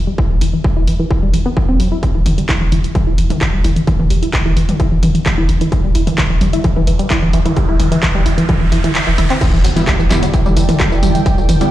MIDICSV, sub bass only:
0, 0, Header, 1, 2, 480
1, 0, Start_track
1, 0, Key_signature, 1, "minor"
1, 0, Tempo, 461538
1, 189, Time_signature, 4, 2, 24, 8
1, 12177, End_track
2, 0, Start_track
2, 0, Title_t, "Sub bass"
2, 0, Program_c, 0, 38
2, 316, Note_on_c, 0, 28, 77
2, 423, Note_off_c, 0, 28, 0
2, 429, Note_on_c, 0, 28, 102
2, 553, Note_off_c, 0, 28, 0
2, 795, Note_on_c, 0, 28, 76
2, 902, Note_off_c, 0, 28, 0
2, 909, Note_on_c, 0, 28, 100
2, 1033, Note_off_c, 0, 28, 0
2, 1275, Note_on_c, 0, 28, 76
2, 1382, Note_off_c, 0, 28, 0
2, 1388, Note_on_c, 0, 28, 98
2, 1512, Note_off_c, 0, 28, 0
2, 1755, Note_on_c, 0, 28, 74
2, 1863, Note_off_c, 0, 28, 0
2, 1869, Note_on_c, 0, 28, 101
2, 1993, Note_off_c, 0, 28, 0
2, 2235, Note_on_c, 0, 28, 73
2, 2343, Note_off_c, 0, 28, 0
2, 2350, Note_on_c, 0, 28, 102
2, 2473, Note_off_c, 0, 28, 0
2, 2716, Note_on_c, 0, 28, 72
2, 2823, Note_off_c, 0, 28, 0
2, 2829, Note_on_c, 0, 28, 93
2, 2953, Note_off_c, 0, 28, 0
2, 3196, Note_on_c, 0, 28, 81
2, 3304, Note_off_c, 0, 28, 0
2, 3310, Note_on_c, 0, 28, 95
2, 3433, Note_off_c, 0, 28, 0
2, 3676, Note_on_c, 0, 28, 75
2, 3784, Note_off_c, 0, 28, 0
2, 3790, Note_on_c, 0, 28, 105
2, 3913, Note_off_c, 0, 28, 0
2, 4156, Note_on_c, 0, 28, 75
2, 4263, Note_off_c, 0, 28, 0
2, 4269, Note_on_c, 0, 28, 105
2, 4393, Note_off_c, 0, 28, 0
2, 4635, Note_on_c, 0, 28, 78
2, 4743, Note_off_c, 0, 28, 0
2, 4749, Note_on_c, 0, 28, 93
2, 4873, Note_off_c, 0, 28, 0
2, 5116, Note_on_c, 0, 28, 77
2, 5223, Note_off_c, 0, 28, 0
2, 5229, Note_on_c, 0, 28, 96
2, 5353, Note_off_c, 0, 28, 0
2, 5595, Note_on_c, 0, 28, 75
2, 5704, Note_off_c, 0, 28, 0
2, 5710, Note_on_c, 0, 28, 105
2, 5833, Note_off_c, 0, 28, 0
2, 6076, Note_on_c, 0, 28, 81
2, 6183, Note_off_c, 0, 28, 0
2, 6189, Note_on_c, 0, 28, 103
2, 6313, Note_off_c, 0, 28, 0
2, 6555, Note_on_c, 0, 28, 74
2, 6663, Note_off_c, 0, 28, 0
2, 6669, Note_on_c, 0, 28, 95
2, 6793, Note_off_c, 0, 28, 0
2, 7036, Note_on_c, 0, 28, 80
2, 7143, Note_off_c, 0, 28, 0
2, 7150, Note_on_c, 0, 28, 99
2, 7273, Note_off_c, 0, 28, 0
2, 7517, Note_on_c, 0, 28, 76
2, 7624, Note_off_c, 0, 28, 0
2, 7630, Note_on_c, 0, 28, 104
2, 7753, Note_off_c, 0, 28, 0
2, 7995, Note_on_c, 0, 28, 76
2, 8103, Note_off_c, 0, 28, 0
2, 8109, Note_on_c, 0, 28, 103
2, 8233, Note_off_c, 0, 28, 0
2, 8476, Note_on_c, 0, 28, 80
2, 8583, Note_off_c, 0, 28, 0
2, 8589, Note_on_c, 0, 28, 99
2, 8713, Note_off_c, 0, 28, 0
2, 8956, Note_on_c, 0, 28, 79
2, 9063, Note_off_c, 0, 28, 0
2, 9069, Note_on_c, 0, 28, 97
2, 9193, Note_off_c, 0, 28, 0
2, 9436, Note_on_c, 0, 28, 74
2, 9543, Note_off_c, 0, 28, 0
2, 9549, Note_on_c, 0, 28, 106
2, 9673, Note_off_c, 0, 28, 0
2, 9915, Note_on_c, 0, 28, 80
2, 10023, Note_off_c, 0, 28, 0
2, 10029, Note_on_c, 0, 28, 109
2, 10153, Note_off_c, 0, 28, 0
2, 10396, Note_on_c, 0, 28, 75
2, 10503, Note_off_c, 0, 28, 0
2, 10509, Note_on_c, 0, 28, 97
2, 10633, Note_off_c, 0, 28, 0
2, 10877, Note_on_c, 0, 28, 82
2, 10984, Note_off_c, 0, 28, 0
2, 10990, Note_on_c, 0, 28, 97
2, 11113, Note_off_c, 0, 28, 0
2, 11357, Note_on_c, 0, 28, 78
2, 11465, Note_off_c, 0, 28, 0
2, 11471, Note_on_c, 0, 28, 105
2, 11594, Note_off_c, 0, 28, 0
2, 11838, Note_on_c, 0, 28, 81
2, 11945, Note_off_c, 0, 28, 0
2, 11951, Note_on_c, 0, 28, 103
2, 12074, Note_off_c, 0, 28, 0
2, 12177, End_track
0, 0, End_of_file